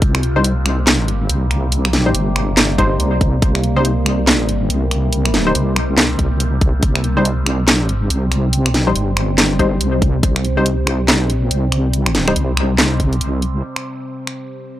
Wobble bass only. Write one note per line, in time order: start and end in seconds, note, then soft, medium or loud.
0.02 1.03 C2 loud
1.03 1.28 A1 loud
1.29 1.88 C2 loud
1.88 2.13 B1 loud
2.14 2.98 G1 loud
3.00 3.41 C2 loud
3.42 4.69 C2 loud
4.70 5.54 C2 loud
5.55 6.17 C2 loud
6.19 6.81 C2 loud
6.83 8.09 C2 loud
8.10 8.69 C2 loud
8.69 8.94 B1 loud
8.95 9.79 G1 loud
9.81 10.22 C2 loud
10.23 11.12 C2 medium
11.12 11.37 B1 medium
11.37 11.49 A#1 medium
11.51 12.35 C2 loud
12.36 13.20 C2 loud
13.21 13.62 C2 loud